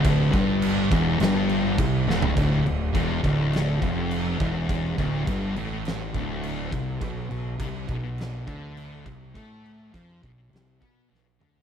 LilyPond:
<<
  \new Staff \with { instrumentName = "Distorted electric guitar" } { \clef bass \time 4/4 \key g \dorian \tempo 4 = 103 d,8 g,4 e,8 g,4 c8 d,8 | \key d \dorian d,8 d,8 e,8 d,4 f,4 e,8~ | e,8 d,8 g,8 a,4 d,4 c8 | b,8 b,8 c8 b,4 d4 c8 |
a4 f8 b,8 c8 b8 b,8 d8 | }
  \new Staff \with { instrumentName = "Distorted electric guitar" } { \clef bass \time 4/4 \key g \dorian d,8 g,4 e,8 g,4 c8 d,8 | \key d \dorian d,8 d,8 e,8 d,4 f,4 e,8~ | e,8 d,8 g,8 a,4 d,4 c8 | b,8 b,8 c8 b,4 d4 c8 |
a4 f8 b,8 c8 b8 b,8 d8 | }
  \new Staff \with { instrumentName = "Fingered electric bass" } { \clef bass \time 4/4 \key g \dorian d,,8 g,,4 e,,8 g,,4 c,8 d,,8 | \key d \dorian d,,8 d,,8 e,,8 d,,4 f,,4 e,,8~ | e,,8 d,,8 g,,8 a,,4 d,,4 c,8 | b,,8 b,,8 c,8 b,,4 d,4 c,8 |
a,4 f,8 b,,8 c,8 b,8 b,,8 d,8 | }
  \new DrumStaff \with { instrumentName = "Drums" } \drummode { \time 4/4 <cymc bd>8 <cymc bd>8 cymc8 <cymc bd>8 <cymc sn>8 cymc8 <cymc bd>8 sn16 tomfh16 | <cymc bd>8 cymc8 <cymc bd>8 <cymc bd>8 <cymc sn>8 <cymc bd>8 cymc8 <cymc bd>8 | <cymc bd>8 <cymc bd>8 <cymc bd>8 cymc8 <cymc sn>8 <cymc bd>8 cymc8 <cymc bd>8 | <cymc bd>8 cymc8 <cymc bd>8 <cymc bd>8 <cymc sn>8 <cymc bd>8 cymc8 <cymc bd>8 |
<cymc bd>8 cymc8 <cymc bd>8 <cymc bd>8 <cymc sn>8 <cymc bd>8 sn8 toml16 tomfh16 | }
>>